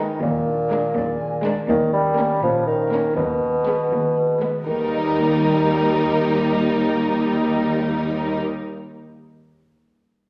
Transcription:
Already playing: bassoon D#3, harp D#3 D#4 G#4 G#5, viola section G#3, violin section B4
0.00 violin section D#4, harp D#5
0.22 cello section D#2, double bass section D#2, bassoon A#2, harp D#3
0.47 harp D4
0.71 viola section G#3, violin section D4 A#4, harp G#4
0.96 cello section D#2, harp D5
1.21 harp G#5
1.45 viola section G#3, violin section D4 A#4, harp D5
1.69 cello section D#2, double bass section D#2, bassoon D#3, harp D#3
1.93 bassoon G3, harp C#4
2.18 viola section A#3, violin section C#4 A#4, harp A#4
2.43 cello section A#2, bassoon F3, harp C#5
2.67 bassoon D#3, harp A#5
2.92 viola section A#3, violin section C#4 A#4, harp C#5
3.16 cello section D#2, double bass section D#2, bassoon B2, harp D#3
3.41 harp B3
3.66 viola section G#3, violin section B3 B4, harp B4
3.91 cello section D#2, harp G#4
4.16 harp B5
4.41 viola section G#3, violin section B3 B4, harp B4
4.66 cello section D#2, double bass section D#2, bassoon D#3, harp D#3, viola section G3, violin section D#4 A#4
4.74 harp G3
4.81 harp D#4
4.88 harp A#4
4.95 harp D#5

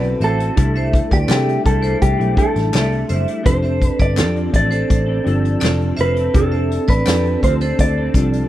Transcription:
Already playing: picked electric bass B1, clean electric guitar D3 C4 F#4 A4 B4, tine electric piano C4 E4 F#4 A4
0.03 closed hi-hat
0.19 picked electric bass A1, clean electric guitar D3 C4 F#4, vibraphone C5 E5, closed hi-hat
0.23 clean electric guitar A4
0.38 clean electric guitar F#4 A4, closed hi-hat
0.42 clean electric guitar C4
0.56 picked electric bass C2, clean electric guitar C3 G3 A3 E4, tine electric piano D4 E4 G4 A4, kick, closed hi-hat
0.74 clean electric guitar G3 A3 E4, vibraphone C5 E5, closed hi-hat
0.93 kick, closed hi-hat
1.11 picked electric bass D2, clean electric guitar G4, vibraphone B4 D5, kick, closed hi-hat
1.27 clean electric guitar C3 G3 A3 E4, picked electric bass C3, tine electric piano D4 E4 G4 G#4, vibraphone A4 D5, snare, clap, closed hi-hat
1.31 clean electric guitar G4
1.36 tine electric piano A4
1.49 closed hi-hat
1.63 picked electric bass C2, clean electric guitar C3 G3 A3 E4 A4, kick, closed hi-hat
1.81 clean electric guitar G3 A3 E4, vibraphone A4 C5, closed hi-hat
2.02 picked electric bass C2, clean electric guitar G4, kick, closed hi-hat
2.17 picked electric bass B1, clean electric guitar G3 A3 E4, closed hi-hat
2.35 clean electric guitar C3 G3 A3 E4 A4, tine electric piano D4 E4 G4 A4, kick, closed hi-hat
2.56 picked electric bass A1, snare, closed hi-hat
2.73 picked electric bass C2, clean electric guitar C3 G3 A3 E4, vibraphone A4 D5, snare, clap, closed hi-hat
2.92 closed hi-hat
3.08 picked electric bass F#1, clean electric guitar C3 G3 A3, vibraphone C5 E5, closed hi-hat
3.13 clean electric guitar E4
3.26 clean electric guitar A3 E4, closed hi-hat
3.30 clean electric guitar G3
3.43 picked electric bass F1, clean electric guitar F3 C4 D4 A4 C5, tine electric piano C4 D4 G4 A4, kick, closed hi-hat
3.62 clean electric guitar C4 D4 A4, vibraphone C5 E5, closed hi-hat
3.82 kick, closed hi-hat
3.86 clean electric guitar B4
3.99 picked electric bass G1, vibraphone B4 D5, clean electric guitar D5, kick, closed hi-hat
4.16 picked electric bass F2, clean electric guitar F3 C4 D4 A4, tine electric piano C4 D4 G4 A4, vibraphone A4 D5, snare, clap, closed hi-hat
4.36 closed hi-hat
4.51 picked electric bass A1, clean electric guitar F3 C4 D4, kick, closed hi-hat
4.56 clean electric guitar A4 D5
4.70 clean electric guitar D4 A4, vibraphone A4 C5, closed hi-hat
4.74 clean electric guitar C4
4.90 picked electric bass A1, kick, closed hi-hat
5.06 clean electric guitar D4 A4
5.10 clean electric guitar C4
5.24 picked electric bass G1, clean electric guitar F3 C4 D4 A4, tine electric piano C4 D4 G4 A4, closed hi-hat
5.45 closed hi-hat
5.60 picked electric bass F1, clean electric guitar F3 C4 D4 A4, vibraphone A4 D5, clap, closed hi-hat
5.64 snare
5.81 closed hi-hat
5.97 picked electric bass F1, clean electric guitar F3 C4 D4 A4, vibraphone C5 E5, closed hi-hat
6.01 clean electric guitar B4
6.15 clean electric guitar D4 A4, closed hi-hat
6.19 clean electric guitar C4
6.34 picked electric bass F1, clean electric guitar F3 C4 D4 A4, tine electric piano C4 D4 G4 A4, kick, closed hi-hat
6.52 clean electric guitar C4 D4 A4, vibraphone C5 E5, closed hi-hat
6.71 closed hi-hat
6.88 picked electric bass A1, vibraphone B4 D5, clean electric guitar B4, kick, closed hi-hat
7.06 picked electric bass F2, clean electric guitar F3 C4 D4 A4, tine electric piano C4 D4 G4 A4, vibraphone A4 D5, snare, clap, closed hi-hat
7.25 closed hi-hat
7.43 picked electric bass D2, clean electric guitar F3 C4 D4 C5, kick, closed hi-hat
7.48 clean electric guitar A4
7.61 clean electric guitar D4 A4, vibraphone A4 C5, closed hi-hat
7.65 clean electric guitar C4
7.79 picked electric bass D2, clean electric guitar D5, kick, closed hi-hat
7.97 clean electric guitar D4 A4
8.01 clean electric guitar C4
8.14 picked electric bass C2, clean electric guitar F3 C4 D4, tine electric piano C4 D4 G4 A4, kick, closed hi-hat
8.19 clean electric guitar A4
8.33 closed hi-hat

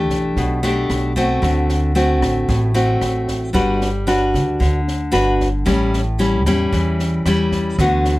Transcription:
Already playing: upright bass E2, nylon-string guitar E3 A3 D4 G4
0.10 upright bass B1, kick, snare
0.37 upright bass B1, nylon-string guitar B2, kick, snare
0.63 nylon-string guitar A3 D4 G4, snare
0.89 upright bass B1, cross-stick, snare
1.16 nylon-string guitar A3 C4 F#4, kick, snare
1.42 upright bass D2, nylon-string guitar D3, kick, cross-stick, snare
1.69 snare
1.95 nylon-string guitar A3 C4 F#4, snare
2.22 upright bass A1, kick, cross-stick, snare
2.49 upright bass A1, nylon-string guitar A2, kick, snare
2.74 nylon-string guitar A3 C4 F#4, snare
3.01 upright bass A1, cross-stick, snare
3.28 kick, snare
3.53 upright bass G1, nylon-string guitar G3 D4 F#4 B4, kick, snare
3.81 snare
4.07 nylon-string guitar D4 F#4 B4, cross-stick, snare
4.34 upright bass D2, kick, snare
4.60 upright bass D2, nylon-string guitar D3, kick, snare
4.88 snare
5.12 upright bass G1, nylon-string guitar D4 F#4 B4, cross-stick, snare
5.40 kick, snare
5.66 upright bass A1, nylon-string guitar A2 G3 C#4 E4, kick, cross-stick, snare
5.94 snare
6.19 nylon-string guitar G3 C#4 E4, snare
6.46 upright bass E2, nylon-string guitar G3 C#4 E4, kick, cross-stick, snare
6.72 upright bass E2, nylon-string guitar E3, kick, snare
6.99 snare
7.25 upright bass E2, nylon-string guitar G3 C#4 E4, cross-stick, snare
7.52 kick, snare
7.78 upright bass D2, nylon-string guitar D3 A3 B3 F#4, kick, snare
8.05 snare

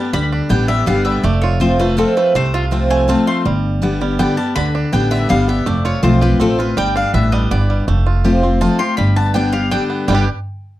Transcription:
Already playing: five-string banjo G3 B3, steel-string acoustic guitar B3 G4, mandolin A5
0.13 upright bass D2, steel-string acoustic guitar D3, five-string banjo G3, mandolin B5
0.32 five-string banjo D4
0.49 upright bass A1, steel-string acoustic guitar D3 G3 B3 G4, five-string banjo B3, mandolin G5
0.68 five-string banjo G3, steel-string acoustic guitar B3 G4, mandolin E5
0.86 upright bass G1, steel-string acoustic guitar D3 G3 B3 G4, five-string banjo B3, mandolin F5
1.05 five-string banjo G3, mandolin E5
1.23 upright bass F1, steel-string acoustic guitar F2, five-string banjo A3, mandolin D5
1.42 five-string banjo F4, mandolin C#5
1.60 steel-string acoustic guitar F3 A3 C4 F4, five-string banjo C4, mandolin C5
1.79 five-string banjo A3, steel-string acoustic guitar C4 F4, mandolin B4
1.97 steel-string acoustic guitar F3 A3 C4 F4, five-string banjo C4, mandolin A4
2.17 five-string banjo A3, mandolin B4
2.34 upright bass C2, steel-string acoustic guitar C3, five-string banjo A3, mandolin C5
2.54 mandolin F4, five-string banjo F4
2.71 steel-string acoustic guitar F3 A3 C4 F4, five-string banjo C4
2.90 five-string banjo A3, mandolin G#5
3.08 steel-string acoustic guitar F3 A3 C4 F4, five-string banjo C4, mandolin A5
3.27 five-string banjo A3, mandolin C6
3.45 upright bass G1, steel-string acoustic guitar G2, five-string banjo G3
3.82 steel-string acoustic guitar D3 G3 B3 G4, five-string banjo B3
4.01 five-string banjo G3, steel-string acoustic guitar B3 G4
4.19 steel-string acoustic guitar D3 G3 B3 G4, five-string banjo B3, mandolin G5
4.37 five-string banjo G3, steel-string acoustic guitar B3 G4, mandolin A5
4.56 upright bass D2, steel-string acoustic guitar D3, five-string banjo D3, mandolin B5
4.75 five-string banjo D4
4.92 upright bass A1, steel-string acoustic guitar D3 G3 B3 G4, five-string banjo B3, mandolin G5
5.11 five-string banjo D3, mandolin E5
5.29 upright bass G1, steel-string acoustic guitar D3 G3 B3 G4, five-string banjo G3, mandolin F5
5.48 five-string banjo B3, steel-string acoustic guitar B3 G4, mandolin E5
5.66 upright bass F1, steel-string acoustic guitar F2, five-string banjo A3, mandolin D5
5.85 five-string banjo F4, mandolin C#5
6.03 upright bass B1, steel-string acoustic guitar F3 A3 C4 F4, five-string banjo C4, mandolin C5
6.21 steel-string acoustic guitar C4 F4, five-string banjo G4, mandolin B4
6.40 upright bass A1, steel-string acoustic guitar F3 A3 C4 F4, five-string banjo C4, mandolin A4
6.59 steel-string acoustic guitar C4 F4, five-string banjo F4, mandolin B4
6.77 upright bass G1, steel-string acoustic guitar G2, five-string banjo G3, mandolin G5
6.96 five-string banjo D4, mandolin F5
7.14 upright bass A1, steel-string acoustic guitar A2, five-string banjo B3, mandolin E5
7.32 five-string banjo G3, mandolin D#5
7.51 upright bass G1, steel-string acoustic guitar G2, five-string banjo B3, mandolin D5
7.70 five-string banjo G3
7.88 upright bass F1, steel-string acoustic guitar F2, five-string banjo A3
8.06 five-string banjo F4
8.24 steel-string acoustic guitar F3 A3 C4 F4, five-string banjo G4
8.43 five-string banjo C4, steel-string acoustic guitar C4 F4
8.61 steel-string acoustic guitar F3 A3 C4 F4, five-string banjo F4, mandolin A5
8.79 steel-string acoustic guitar F4, five-string banjo G4, mandolin C6
8.97 upright bass G1, steel-string acoustic guitar G2, five-string banjo G3, mandolin B5
9.16 five-string banjo B3, mandolin A5
9.34 steel-string acoustic guitar D3 G3 B3 G4, five-string banjo D4, mandolin G5
9.53 steel-string acoustic guitar B3 G4, five-string banjo G4, mandolin F5
9.71 steel-string acoustic guitar D3 G3 B3 G4, five-string banjo D4, mandolin G5
9.90 five-string banjo B3
10.08 upright bass G1, steel-string acoustic guitar G2 B2 D3 G3 B3 G4, five-string banjo G3 B3, mandolin G5
10.12 five-string banjo D4 G4

